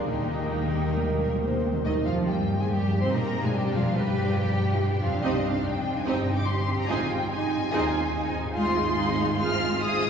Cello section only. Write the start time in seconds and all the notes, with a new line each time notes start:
0.08 D#3
2.71 G4
3.12 D#4
3.55 D4
3.98 B4
4.40 G4
4.82 D4
6.06 D#4
6.48 G4
6.89 F4
7.31 D#4
7.73 F4
8.14 D#4
8.55 F4
8.96 D#4
9.39 F4
9.81 G#4